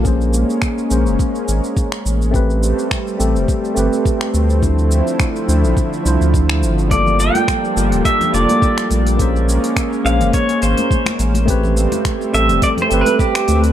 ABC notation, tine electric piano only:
X:1
M:4/4
L:1/8
Q:"Swing 16ths" 1/4=105
K:Bblyd
V:1 name="Tine electric piano"
[B,_D_Ac]3 [B,DAc] z4 | [A,CG=B]3 [A,CGA]2 [A,CGB]3 | [F,DEc]3 [F,DEc] z [F,DEc]3 | [G,B,FA]3 [G,B,FG]2 [G,B,FA]3 |
[B,_D_Ac]3 [B,DAc] z4 | [A,CG=B]3 [A,CGA]2 [A,CGB]3 |]